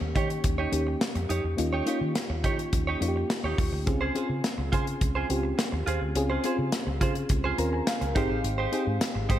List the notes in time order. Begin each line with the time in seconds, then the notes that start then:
Already playing: A#3 C#4 D#4 G4
0.01 D#2, muted clean electric guitar stroke
0.15 D#3 D#4 G4 C#5, kick, closed hi-hat
0.30 muted clean electric guitar stroke, closed hi-hat
0.44 D#2, muted clean electric guitar stroke, kick, closed hi-hat
0.58 D#4 G4 C#5
0.72 D#2 A#3 C#4 D#4 G4, closed hi-hat
0.87 muted clean electric guitar stroke
1.01 muted clean electric guitar stroke, snare, closed hi-hat
1.15 F2, muted clean electric guitar stroke, closed hi-hat
1.29 F2 D#4 G4 C#5, closed hi-hat
1.44 E2, muted clean electric guitar stroke
1.57 D#2 A#3 C#4 D#4 F4, muted clean electric guitar stroke, closed hi-hat
1.73 D#4 G4 C#5
1.86 A#3 C#4 D#4 F4 G4 C#5, closed hi-hat
2.01 D#3, muted clean electric guitar stroke
2.15 snare, closed hi-hat
2.30 D#2, muted clean electric guitar stroke
2.44 D#3 D#4 G4 C#5, kick, closed hi-hat
2.59 muted clean electric guitar stroke, closed hi-hat
2.73 D#2, muted clean electric guitar stroke, kick, closed hi-hat
2.87 D#4 G4 C#5
3.00 F2 A#3 C#4 D#4 F4, muted clean electric guitar stroke, closed hi-hat
3.08 G4
3.16 muted clean electric guitar stroke
3.30 muted clean electric guitar stroke, snare, closed hi-hat
3.44 D#2 D#4 G4 C#5
3.58 D#2, muted clean electric guitar stroke, kick, open hi-hat
3.72 D2, muted clean electric guitar stroke
3.86 C#2 C4 C#4 F4 G#4, muted clean electric guitar stroke, kick, closed hi-hat
4.01 F4 G#4 C5
4.15 C4 C#4 F4 G#4 C5, closed hi-hat
4.29 C#3, muted clean electric guitar stroke
4.44 snare, closed hi-hat
4.58 C#2, muted clean electric guitar stroke
4.72 C#3 F4 G#4 C5, kick, closed hi-hat
4.87 muted clean electric guitar stroke, closed hi-hat
5.01 C#2, muted clean electric guitar stroke, kick, closed hi-hat
5.15 F4 G#4 C5
5.29 C#2 C4 C#4 F4 G4, muted clean electric guitar stroke, closed hi-hat
5.43 muted clean electric guitar stroke
5.58 muted clean electric guitar stroke, snare, closed hi-hat
5.72 D#2, muted clean electric guitar stroke
5.87 D#2 F4 G#4 C5, closed hi-hat
6.01 D2, muted clean electric guitar stroke
6.15 C#2 C4 C#4 F4 G#4, muted clean electric guitar stroke, closed hi-hat
6.30 F4 G#4 C5
6.44 C4 C#4 F4 G#4 C5, closed hi-hat
6.58 C#3, muted clean electric guitar stroke
6.72 snare, closed hi-hat
6.87 C#2, muted clean electric guitar stroke
7.01 C#3 F4 G#4 C5, kick, closed hi-hat
7.15 muted clean electric guitar stroke, closed hi-hat
7.29 C#2, muted clean electric guitar stroke, kick, closed hi-hat
7.44 F4 G#4 C5
7.58 D#2 C4 C#4 F4 A#4 A#5, muted clean electric guitar stroke, closed hi-hat
7.73 G#5, muted clean electric guitar stroke
7.87 F5, muted clean electric guitar stroke, snare, closed hi-hat
8.01 C#2, muted clean electric guitar stroke, closed hi-hat
8.15 G#1 C4 D#4 G4 G#4 C5 F5, kick, closed hi-hat
8.30 A1 D#4 G4 C5
8.44 G#1, muted clean electric guitar stroke, closed hi-hat
8.58 D#4 G4 C5
8.72 C4 D#4 G4 G#4 C5, closed hi-hat
8.87 G#2, muted clean electric guitar stroke
9.01 snare, closed hi-hat
9.15 G#1, muted clean electric guitar stroke
9.29 G#2 D#4 G4 C5, kick, closed hi-hat